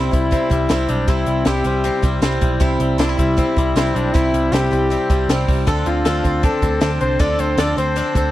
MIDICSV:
0, 0, Header, 1, 6, 480
1, 0, Start_track
1, 0, Key_signature, 0, "major"
1, 0, Tempo, 382166
1, 1362, Time_signature, 4, 2, 24, 8
1, 10442, End_track
2, 0, Start_track
2, 0, Title_t, "Flugelhorn"
2, 0, Program_c, 0, 56
2, 150, Note_on_c, 0, 64, 84
2, 1124, Note_on_c, 0, 62, 77
2, 1143, Note_off_c, 0, 64, 0
2, 1360, Note_on_c, 0, 64, 85
2, 1379, Note_off_c, 0, 62, 0
2, 1835, Note_off_c, 0, 64, 0
2, 1842, Note_on_c, 0, 67, 94
2, 2752, Note_off_c, 0, 67, 0
2, 3990, Note_on_c, 0, 64, 82
2, 4961, Note_on_c, 0, 62, 82
2, 4980, Note_off_c, 0, 64, 0
2, 5187, Note_on_c, 0, 64, 94
2, 5205, Note_off_c, 0, 62, 0
2, 5687, Note_on_c, 0, 67, 86
2, 5706, Note_off_c, 0, 64, 0
2, 6886, Note_off_c, 0, 67, 0
2, 7367, Note_on_c, 0, 65, 72
2, 8099, Note_on_c, 0, 69, 81
2, 8118, Note_off_c, 0, 65, 0
2, 8554, Note_off_c, 0, 69, 0
2, 8561, Note_on_c, 0, 69, 76
2, 8670, Note_off_c, 0, 69, 0
2, 8805, Note_on_c, 0, 72, 96
2, 9046, Note_on_c, 0, 74, 101
2, 9065, Note_off_c, 0, 72, 0
2, 9301, Note_on_c, 0, 72, 87
2, 9320, Note_off_c, 0, 74, 0
2, 9538, Note_on_c, 0, 74, 88
2, 9557, Note_off_c, 0, 72, 0
2, 9763, Note_off_c, 0, 74, 0
2, 9770, Note_on_c, 0, 72, 82
2, 10442, Note_off_c, 0, 72, 0
2, 10442, End_track
3, 0, Start_track
3, 0, Title_t, "Twelve-string acoustic guitar"
3, 0, Program_c, 1, 25
3, 0, Note_on_c, 1, 48, 81
3, 0, Note_on_c, 1, 55, 78
3, 0, Note_on_c, 1, 60, 81
3, 0, Note_on_c, 1, 64, 84
3, 127, Note_off_c, 1, 64, 0
3, 140, Note_off_c, 1, 60, 0
3, 142, Note_on_c, 1, 64, 50
3, 150, Note_off_c, 1, 55, 0
3, 155, Note_off_c, 1, 48, 0
3, 155, Note_on_c, 1, 60, 43
3, 165, Note_on_c, 1, 55, 42
3, 380, Note_off_c, 1, 55, 0
3, 387, Note_on_c, 1, 48, 52
3, 389, Note_off_c, 1, 60, 0
3, 391, Note_off_c, 1, 64, 0
3, 395, Note_on_c, 1, 55, 54
3, 404, Note_on_c, 1, 60, 54
3, 415, Note_on_c, 1, 64, 53
3, 610, Note_off_c, 1, 64, 0
3, 625, Note_on_c, 1, 64, 49
3, 626, Note_off_c, 1, 60, 0
3, 634, Note_off_c, 1, 48, 0
3, 638, Note_off_c, 1, 55, 0
3, 641, Note_on_c, 1, 60, 48
3, 653, Note_on_c, 1, 55, 41
3, 861, Note_off_c, 1, 55, 0
3, 866, Note_off_c, 1, 60, 0
3, 866, Note_on_c, 1, 48, 80
3, 873, Note_off_c, 1, 64, 0
3, 876, Note_on_c, 1, 55, 80
3, 881, Note_on_c, 1, 60, 81
3, 889, Note_on_c, 1, 64, 82
3, 1336, Note_off_c, 1, 48, 0
3, 1342, Note_off_c, 1, 55, 0
3, 1348, Note_off_c, 1, 64, 0
3, 1351, Note_on_c, 1, 48, 73
3, 1357, Note_on_c, 1, 55, 77
3, 1359, Note_off_c, 1, 60, 0
3, 1363, Note_on_c, 1, 64, 81
3, 1365, Note_on_c, 1, 60, 74
3, 1821, Note_off_c, 1, 48, 0
3, 1825, Note_off_c, 1, 55, 0
3, 1834, Note_off_c, 1, 64, 0
3, 1836, Note_on_c, 1, 48, 67
3, 1840, Note_on_c, 1, 55, 79
3, 1841, Note_off_c, 1, 60, 0
3, 1846, Note_on_c, 1, 60, 80
3, 1849, Note_on_c, 1, 64, 75
3, 2059, Note_off_c, 1, 64, 0
3, 2074, Note_off_c, 1, 60, 0
3, 2074, Note_on_c, 1, 64, 53
3, 2079, Note_off_c, 1, 48, 0
3, 2081, Note_off_c, 1, 55, 0
3, 2089, Note_on_c, 1, 60, 48
3, 2099, Note_on_c, 1, 55, 42
3, 2306, Note_off_c, 1, 55, 0
3, 2310, Note_off_c, 1, 60, 0
3, 2311, Note_on_c, 1, 48, 50
3, 2318, Note_off_c, 1, 64, 0
3, 2321, Note_on_c, 1, 55, 58
3, 2325, Note_on_c, 1, 60, 65
3, 2333, Note_on_c, 1, 64, 61
3, 2526, Note_off_c, 1, 64, 0
3, 2542, Note_off_c, 1, 60, 0
3, 2542, Note_on_c, 1, 64, 62
3, 2554, Note_off_c, 1, 55, 0
3, 2557, Note_off_c, 1, 48, 0
3, 2557, Note_on_c, 1, 60, 52
3, 2569, Note_on_c, 1, 55, 46
3, 2776, Note_off_c, 1, 55, 0
3, 2777, Note_off_c, 1, 60, 0
3, 2785, Note_off_c, 1, 64, 0
3, 2785, Note_on_c, 1, 48, 76
3, 2791, Note_on_c, 1, 55, 83
3, 2792, Note_on_c, 1, 60, 86
3, 2800, Note_on_c, 1, 64, 86
3, 3249, Note_off_c, 1, 48, 0
3, 3259, Note_off_c, 1, 55, 0
3, 3264, Note_on_c, 1, 48, 78
3, 3267, Note_off_c, 1, 60, 0
3, 3268, Note_off_c, 1, 64, 0
3, 3272, Note_on_c, 1, 60, 86
3, 3274, Note_on_c, 1, 55, 85
3, 3283, Note_on_c, 1, 64, 94
3, 3729, Note_off_c, 1, 48, 0
3, 3733, Note_off_c, 1, 55, 0
3, 3742, Note_off_c, 1, 64, 0
3, 3744, Note_on_c, 1, 48, 75
3, 3748, Note_on_c, 1, 55, 83
3, 3750, Note_off_c, 1, 60, 0
3, 3755, Note_on_c, 1, 60, 90
3, 3758, Note_on_c, 1, 64, 98
3, 3975, Note_off_c, 1, 64, 0
3, 3988, Note_off_c, 1, 60, 0
3, 3990, Note_on_c, 1, 64, 49
3, 3994, Note_off_c, 1, 48, 0
3, 3995, Note_off_c, 1, 55, 0
3, 4003, Note_on_c, 1, 60, 47
3, 4012, Note_on_c, 1, 55, 46
3, 4226, Note_off_c, 1, 55, 0
3, 4228, Note_off_c, 1, 60, 0
3, 4228, Note_on_c, 1, 48, 53
3, 4237, Note_off_c, 1, 64, 0
3, 4241, Note_on_c, 1, 55, 58
3, 4243, Note_on_c, 1, 60, 62
3, 4252, Note_on_c, 1, 64, 60
3, 4461, Note_off_c, 1, 64, 0
3, 4476, Note_off_c, 1, 48, 0
3, 4477, Note_off_c, 1, 60, 0
3, 4477, Note_on_c, 1, 64, 54
3, 4482, Note_off_c, 1, 55, 0
3, 4492, Note_on_c, 1, 60, 46
3, 4498, Note_on_c, 1, 55, 38
3, 4709, Note_off_c, 1, 55, 0
3, 4714, Note_off_c, 1, 60, 0
3, 4718, Note_on_c, 1, 48, 75
3, 4720, Note_off_c, 1, 64, 0
3, 4724, Note_on_c, 1, 55, 79
3, 4729, Note_on_c, 1, 60, 83
3, 4737, Note_on_c, 1, 64, 90
3, 5181, Note_off_c, 1, 48, 0
3, 5186, Note_off_c, 1, 55, 0
3, 5196, Note_on_c, 1, 48, 67
3, 5201, Note_off_c, 1, 64, 0
3, 5201, Note_on_c, 1, 55, 76
3, 5204, Note_off_c, 1, 60, 0
3, 5209, Note_on_c, 1, 60, 74
3, 5216, Note_on_c, 1, 64, 76
3, 5661, Note_off_c, 1, 48, 0
3, 5669, Note_off_c, 1, 55, 0
3, 5676, Note_on_c, 1, 48, 75
3, 5677, Note_off_c, 1, 64, 0
3, 5684, Note_off_c, 1, 60, 0
3, 5684, Note_on_c, 1, 55, 76
3, 5689, Note_on_c, 1, 60, 74
3, 5692, Note_on_c, 1, 64, 78
3, 5896, Note_off_c, 1, 64, 0
3, 5907, Note_off_c, 1, 60, 0
3, 5911, Note_on_c, 1, 64, 48
3, 5918, Note_off_c, 1, 55, 0
3, 5920, Note_off_c, 1, 48, 0
3, 5922, Note_on_c, 1, 60, 45
3, 5933, Note_on_c, 1, 55, 42
3, 6151, Note_off_c, 1, 55, 0
3, 6156, Note_on_c, 1, 48, 53
3, 6158, Note_off_c, 1, 64, 0
3, 6160, Note_off_c, 1, 60, 0
3, 6166, Note_on_c, 1, 55, 54
3, 6175, Note_on_c, 1, 60, 55
3, 6178, Note_on_c, 1, 64, 61
3, 6385, Note_off_c, 1, 64, 0
3, 6400, Note_off_c, 1, 48, 0
3, 6400, Note_on_c, 1, 64, 60
3, 6403, Note_off_c, 1, 60, 0
3, 6405, Note_off_c, 1, 55, 0
3, 6418, Note_on_c, 1, 60, 51
3, 6429, Note_on_c, 1, 55, 45
3, 6642, Note_off_c, 1, 64, 0
3, 6644, Note_off_c, 1, 55, 0
3, 6647, Note_off_c, 1, 60, 0
3, 6647, Note_on_c, 1, 48, 81
3, 6659, Note_on_c, 1, 55, 74
3, 6662, Note_on_c, 1, 60, 84
3, 6667, Note_on_c, 1, 64, 86
3, 7117, Note_off_c, 1, 48, 0
3, 7122, Note_on_c, 1, 50, 82
3, 7126, Note_off_c, 1, 55, 0
3, 7127, Note_off_c, 1, 60, 0
3, 7131, Note_on_c, 1, 53, 79
3, 7132, Note_on_c, 1, 60, 79
3, 7133, Note_off_c, 1, 64, 0
3, 7138, Note_on_c, 1, 62, 84
3, 7145, Note_on_c, 1, 69, 83
3, 7596, Note_off_c, 1, 53, 0
3, 7598, Note_off_c, 1, 50, 0
3, 7598, Note_off_c, 1, 60, 0
3, 7603, Note_off_c, 1, 69, 0
3, 7603, Note_on_c, 1, 50, 79
3, 7610, Note_off_c, 1, 62, 0
3, 7611, Note_on_c, 1, 53, 74
3, 7613, Note_on_c, 1, 60, 74
3, 7615, Note_on_c, 1, 62, 84
3, 7619, Note_on_c, 1, 69, 81
3, 7824, Note_off_c, 1, 69, 0
3, 7839, Note_on_c, 1, 69, 51
3, 7843, Note_off_c, 1, 62, 0
3, 7844, Note_off_c, 1, 50, 0
3, 7847, Note_off_c, 1, 53, 0
3, 7848, Note_off_c, 1, 60, 0
3, 7858, Note_on_c, 1, 62, 47
3, 7868, Note_on_c, 1, 60, 44
3, 8078, Note_off_c, 1, 60, 0
3, 8078, Note_on_c, 1, 53, 53
3, 8082, Note_off_c, 1, 62, 0
3, 8082, Note_off_c, 1, 69, 0
3, 8093, Note_on_c, 1, 60, 54
3, 8097, Note_on_c, 1, 62, 55
3, 8106, Note_on_c, 1, 69, 66
3, 8301, Note_off_c, 1, 69, 0
3, 8316, Note_on_c, 1, 69, 50
3, 8321, Note_off_c, 1, 53, 0
3, 8322, Note_off_c, 1, 62, 0
3, 8328, Note_off_c, 1, 60, 0
3, 8338, Note_on_c, 1, 62, 42
3, 8348, Note_on_c, 1, 60, 40
3, 8545, Note_off_c, 1, 60, 0
3, 8549, Note_off_c, 1, 62, 0
3, 8550, Note_on_c, 1, 50, 77
3, 8557, Note_on_c, 1, 53, 73
3, 8560, Note_off_c, 1, 69, 0
3, 8561, Note_on_c, 1, 60, 73
3, 8564, Note_on_c, 1, 62, 75
3, 8573, Note_on_c, 1, 69, 75
3, 9024, Note_off_c, 1, 53, 0
3, 9027, Note_off_c, 1, 60, 0
3, 9030, Note_off_c, 1, 50, 0
3, 9035, Note_on_c, 1, 50, 78
3, 9037, Note_off_c, 1, 69, 0
3, 9039, Note_on_c, 1, 53, 79
3, 9041, Note_off_c, 1, 62, 0
3, 9042, Note_on_c, 1, 60, 71
3, 9046, Note_on_c, 1, 62, 71
3, 9052, Note_on_c, 1, 69, 75
3, 9499, Note_off_c, 1, 53, 0
3, 9505, Note_off_c, 1, 60, 0
3, 9508, Note_off_c, 1, 50, 0
3, 9513, Note_on_c, 1, 50, 68
3, 9514, Note_off_c, 1, 69, 0
3, 9514, Note_on_c, 1, 53, 78
3, 9520, Note_off_c, 1, 62, 0
3, 9520, Note_on_c, 1, 60, 76
3, 9525, Note_on_c, 1, 62, 79
3, 9529, Note_on_c, 1, 69, 80
3, 9739, Note_off_c, 1, 69, 0
3, 9750, Note_off_c, 1, 62, 0
3, 9754, Note_on_c, 1, 69, 47
3, 9758, Note_off_c, 1, 50, 0
3, 9758, Note_off_c, 1, 53, 0
3, 9758, Note_off_c, 1, 60, 0
3, 9765, Note_on_c, 1, 62, 43
3, 9773, Note_on_c, 1, 60, 40
3, 9991, Note_off_c, 1, 60, 0
3, 9994, Note_on_c, 1, 53, 55
3, 9999, Note_off_c, 1, 69, 0
3, 10001, Note_off_c, 1, 62, 0
3, 10006, Note_on_c, 1, 60, 53
3, 10016, Note_on_c, 1, 62, 60
3, 10018, Note_on_c, 1, 69, 65
3, 10225, Note_off_c, 1, 69, 0
3, 10238, Note_off_c, 1, 53, 0
3, 10240, Note_on_c, 1, 69, 52
3, 10241, Note_off_c, 1, 62, 0
3, 10244, Note_off_c, 1, 60, 0
3, 10256, Note_on_c, 1, 62, 44
3, 10264, Note_on_c, 1, 60, 46
3, 10442, Note_off_c, 1, 60, 0
3, 10442, Note_off_c, 1, 62, 0
3, 10442, Note_off_c, 1, 69, 0
3, 10442, End_track
4, 0, Start_track
4, 0, Title_t, "Clean electric guitar"
4, 0, Program_c, 2, 27
4, 0, Note_on_c, 2, 48, 74
4, 0, Note_on_c, 2, 55, 52
4, 0, Note_on_c, 2, 60, 59
4, 157, Note_off_c, 2, 55, 0
4, 401, Note_off_c, 2, 60, 0
4, 1125, Note_on_c, 2, 55, 55
4, 1347, Note_off_c, 2, 48, 0
4, 1585, Note_off_c, 2, 55, 0
4, 1600, Note_on_c, 2, 55, 57
4, 2065, Note_off_c, 2, 55, 0
4, 3040, Note_on_c, 2, 55, 55
4, 3514, Note_off_c, 2, 55, 0
4, 3529, Note_on_c, 2, 55, 58
4, 3764, Note_on_c, 2, 62, 64
4, 3883, Note_off_c, 2, 62, 0
4, 3883, Note_on_c, 2, 64, 50
4, 3995, Note_off_c, 2, 55, 0
4, 4969, Note_on_c, 2, 55, 57
4, 5203, Note_off_c, 2, 64, 0
4, 5438, Note_off_c, 2, 55, 0
4, 5453, Note_on_c, 2, 55, 56
4, 5913, Note_off_c, 2, 55, 0
4, 6887, Note_on_c, 2, 55, 53
4, 7173, Note_off_c, 2, 55, 0
4, 7367, Note_on_c, 2, 60, 55
4, 7823, Note_off_c, 2, 60, 0
4, 8802, Note_on_c, 2, 60, 51
4, 9275, Note_off_c, 2, 60, 0
4, 9290, Note_on_c, 2, 60, 58
4, 9758, Note_off_c, 2, 60, 0
4, 10442, End_track
5, 0, Start_track
5, 0, Title_t, "Picked electric bass"
5, 0, Program_c, 3, 34
5, 164, Note_on_c, 3, 36, 78
5, 458, Note_off_c, 3, 36, 0
5, 632, Note_on_c, 3, 36, 88
5, 833, Note_off_c, 3, 36, 0
5, 876, Note_on_c, 3, 36, 81
5, 1075, Note_off_c, 3, 36, 0
5, 1117, Note_on_c, 3, 35, 78
5, 1315, Note_off_c, 3, 35, 0
5, 1353, Note_on_c, 3, 36, 95
5, 1553, Note_off_c, 3, 36, 0
5, 1592, Note_on_c, 3, 36, 80
5, 1793, Note_off_c, 3, 36, 0
5, 1832, Note_on_c, 3, 36, 84
5, 2033, Note_off_c, 3, 36, 0
5, 2067, Note_on_c, 3, 36, 82
5, 2368, Note_off_c, 3, 36, 0
5, 2546, Note_on_c, 3, 36, 90
5, 2750, Note_off_c, 3, 36, 0
5, 2782, Note_on_c, 3, 36, 80
5, 2987, Note_off_c, 3, 36, 0
5, 3034, Note_on_c, 3, 35, 86
5, 3234, Note_off_c, 3, 35, 0
5, 3274, Note_on_c, 3, 36, 99
5, 3474, Note_off_c, 3, 36, 0
5, 3512, Note_on_c, 3, 36, 80
5, 3713, Note_off_c, 3, 36, 0
5, 3740, Note_on_c, 3, 36, 92
5, 3947, Note_off_c, 3, 36, 0
5, 4002, Note_on_c, 3, 36, 73
5, 4298, Note_off_c, 3, 36, 0
5, 4480, Note_on_c, 3, 36, 89
5, 4678, Note_off_c, 3, 36, 0
5, 4714, Note_on_c, 3, 36, 85
5, 4915, Note_off_c, 3, 36, 0
5, 4959, Note_on_c, 3, 35, 88
5, 5158, Note_off_c, 3, 35, 0
5, 5210, Note_on_c, 3, 36, 88
5, 5404, Note_off_c, 3, 36, 0
5, 5441, Note_on_c, 3, 36, 86
5, 5639, Note_off_c, 3, 36, 0
5, 5678, Note_on_c, 3, 36, 83
5, 5877, Note_off_c, 3, 36, 0
5, 5925, Note_on_c, 3, 36, 77
5, 6220, Note_off_c, 3, 36, 0
5, 6404, Note_on_c, 3, 36, 91
5, 6601, Note_off_c, 3, 36, 0
5, 6640, Note_on_c, 3, 36, 75
5, 6838, Note_off_c, 3, 36, 0
5, 6888, Note_on_c, 3, 36, 78
5, 7083, Note_off_c, 3, 36, 0
5, 7122, Note_on_c, 3, 38, 91
5, 7320, Note_off_c, 3, 38, 0
5, 7357, Note_on_c, 3, 38, 84
5, 7557, Note_off_c, 3, 38, 0
5, 7598, Note_on_c, 3, 38, 84
5, 7797, Note_off_c, 3, 38, 0
5, 7846, Note_on_c, 3, 38, 77
5, 8140, Note_off_c, 3, 38, 0
5, 8318, Note_on_c, 3, 38, 93
5, 8517, Note_off_c, 3, 38, 0
5, 8562, Note_on_c, 3, 38, 81
5, 8759, Note_off_c, 3, 38, 0
5, 8808, Note_on_c, 3, 36, 82
5, 9003, Note_off_c, 3, 36, 0
5, 9042, Note_on_c, 3, 38, 99
5, 9239, Note_off_c, 3, 38, 0
5, 9283, Note_on_c, 3, 38, 79
5, 9480, Note_off_c, 3, 38, 0
5, 9514, Note_on_c, 3, 38, 85
5, 9715, Note_off_c, 3, 38, 0
5, 9761, Note_on_c, 3, 38, 75
5, 10057, Note_off_c, 3, 38, 0
5, 10235, Note_on_c, 3, 38, 85
5, 10435, Note_off_c, 3, 38, 0
5, 10442, End_track
6, 0, Start_track
6, 0, Title_t, "Drums"
6, 164, Note_on_c, 9, 36, 74
6, 167, Note_on_c, 9, 42, 54
6, 290, Note_off_c, 9, 36, 0
6, 293, Note_off_c, 9, 42, 0
6, 403, Note_on_c, 9, 36, 83
6, 404, Note_on_c, 9, 42, 65
6, 529, Note_off_c, 9, 36, 0
6, 530, Note_off_c, 9, 42, 0
6, 637, Note_on_c, 9, 36, 83
6, 644, Note_on_c, 9, 42, 57
6, 763, Note_off_c, 9, 36, 0
6, 770, Note_off_c, 9, 42, 0
6, 874, Note_on_c, 9, 42, 66
6, 876, Note_on_c, 9, 38, 85
6, 1000, Note_off_c, 9, 42, 0
6, 1002, Note_off_c, 9, 38, 0
6, 1113, Note_on_c, 9, 42, 60
6, 1238, Note_off_c, 9, 42, 0
6, 1352, Note_on_c, 9, 42, 68
6, 1356, Note_on_c, 9, 36, 104
6, 1477, Note_off_c, 9, 42, 0
6, 1482, Note_off_c, 9, 36, 0
6, 1587, Note_on_c, 9, 42, 66
6, 1713, Note_off_c, 9, 42, 0
6, 1821, Note_on_c, 9, 42, 72
6, 1830, Note_on_c, 9, 38, 85
6, 1947, Note_off_c, 9, 42, 0
6, 1956, Note_off_c, 9, 38, 0
6, 2063, Note_on_c, 9, 42, 57
6, 2189, Note_off_c, 9, 42, 0
6, 2310, Note_on_c, 9, 42, 74
6, 2435, Note_off_c, 9, 42, 0
6, 2550, Note_on_c, 9, 36, 85
6, 2555, Note_on_c, 9, 42, 59
6, 2676, Note_off_c, 9, 36, 0
6, 2681, Note_off_c, 9, 42, 0
6, 2793, Note_on_c, 9, 42, 68
6, 2795, Note_on_c, 9, 38, 85
6, 2919, Note_off_c, 9, 42, 0
6, 2921, Note_off_c, 9, 38, 0
6, 3032, Note_on_c, 9, 42, 60
6, 3039, Note_on_c, 9, 36, 78
6, 3157, Note_off_c, 9, 42, 0
6, 3164, Note_off_c, 9, 36, 0
6, 3264, Note_on_c, 9, 42, 75
6, 3275, Note_on_c, 9, 36, 96
6, 3390, Note_off_c, 9, 42, 0
6, 3401, Note_off_c, 9, 36, 0
6, 3515, Note_on_c, 9, 42, 66
6, 3641, Note_off_c, 9, 42, 0
6, 3759, Note_on_c, 9, 42, 70
6, 3768, Note_on_c, 9, 38, 81
6, 3885, Note_off_c, 9, 42, 0
6, 3893, Note_off_c, 9, 38, 0
6, 4003, Note_on_c, 9, 36, 68
6, 4004, Note_on_c, 9, 42, 57
6, 4129, Note_off_c, 9, 36, 0
6, 4130, Note_off_c, 9, 42, 0
6, 4240, Note_on_c, 9, 42, 71
6, 4243, Note_on_c, 9, 36, 77
6, 4366, Note_off_c, 9, 42, 0
6, 4369, Note_off_c, 9, 36, 0
6, 4483, Note_on_c, 9, 36, 86
6, 4498, Note_on_c, 9, 42, 59
6, 4609, Note_off_c, 9, 36, 0
6, 4623, Note_off_c, 9, 42, 0
6, 4734, Note_on_c, 9, 42, 76
6, 4736, Note_on_c, 9, 38, 89
6, 4859, Note_off_c, 9, 42, 0
6, 4861, Note_off_c, 9, 38, 0
6, 4976, Note_on_c, 9, 42, 60
6, 5101, Note_off_c, 9, 42, 0
6, 5212, Note_on_c, 9, 36, 101
6, 5220, Note_on_c, 9, 42, 76
6, 5337, Note_off_c, 9, 36, 0
6, 5346, Note_off_c, 9, 42, 0
6, 5453, Note_on_c, 9, 42, 62
6, 5578, Note_off_c, 9, 42, 0
6, 5698, Note_on_c, 9, 42, 78
6, 5706, Note_on_c, 9, 38, 88
6, 5823, Note_off_c, 9, 42, 0
6, 5832, Note_off_c, 9, 38, 0
6, 5939, Note_on_c, 9, 42, 57
6, 6064, Note_off_c, 9, 42, 0
6, 6171, Note_on_c, 9, 42, 71
6, 6297, Note_off_c, 9, 42, 0
6, 6405, Note_on_c, 9, 36, 81
6, 6411, Note_on_c, 9, 42, 56
6, 6530, Note_off_c, 9, 36, 0
6, 6537, Note_off_c, 9, 42, 0
6, 6651, Note_on_c, 9, 42, 70
6, 6653, Note_on_c, 9, 38, 88
6, 6777, Note_off_c, 9, 42, 0
6, 6779, Note_off_c, 9, 38, 0
6, 6888, Note_on_c, 9, 46, 61
6, 6889, Note_on_c, 9, 36, 79
6, 7013, Note_off_c, 9, 46, 0
6, 7015, Note_off_c, 9, 36, 0
6, 7119, Note_on_c, 9, 42, 73
6, 7126, Note_on_c, 9, 36, 104
6, 7244, Note_off_c, 9, 42, 0
6, 7252, Note_off_c, 9, 36, 0
6, 7360, Note_on_c, 9, 42, 64
6, 7485, Note_off_c, 9, 42, 0
6, 7601, Note_on_c, 9, 42, 77
6, 7610, Note_on_c, 9, 38, 85
6, 7727, Note_off_c, 9, 42, 0
6, 7735, Note_off_c, 9, 38, 0
6, 7846, Note_on_c, 9, 36, 69
6, 7848, Note_on_c, 9, 42, 52
6, 7971, Note_off_c, 9, 36, 0
6, 7974, Note_off_c, 9, 42, 0
6, 8078, Note_on_c, 9, 42, 71
6, 8084, Note_on_c, 9, 36, 82
6, 8203, Note_off_c, 9, 42, 0
6, 8210, Note_off_c, 9, 36, 0
6, 8319, Note_on_c, 9, 36, 83
6, 8323, Note_on_c, 9, 42, 56
6, 8445, Note_off_c, 9, 36, 0
6, 8448, Note_off_c, 9, 42, 0
6, 8558, Note_on_c, 9, 42, 70
6, 8560, Note_on_c, 9, 38, 91
6, 8683, Note_off_c, 9, 42, 0
6, 8685, Note_off_c, 9, 38, 0
6, 8801, Note_on_c, 9, 42, 59
6, 8927, Note_off_c, 9, 42, 0
6, 9036, Note_on_c, 9, 42, 73
6, 9042, Note_on_c, 9, 36, 104
6, 9162, Note_off_c, 9, 42, 0
6, 9168, Note_off_c, 9, 36, 0
6, 9279, Note_on_c, 9, 42, 67
6, 9405, Note_off_c, 9, 42, 0
6, 9518, Note_on_c, 9, 42, 77
6, 9526, Note_on_c, 9, 38, 93
6, 9643, Note_off_c, 9, 42, 0
6, 9652, Note_off_c, 9, 38, 0
6, 9771, Note_on_c, 9, 42, 60
6, 9897, Note_off_c, 9, 42, 0
6, 10000, Note_on_c, 9, 42, 77
6, 10126, Note_off_c, 9, 42, 0
6, 10240, Note_on_c, 9, 36, 92
6, 10249, Note_on_c, 9, 42, 56
6, 10366, Note_off_c, 9, 36, 0
6, 10375, Note_off_c, 9, 42, 0
6, 10442, End_track
0, 0, End_of_file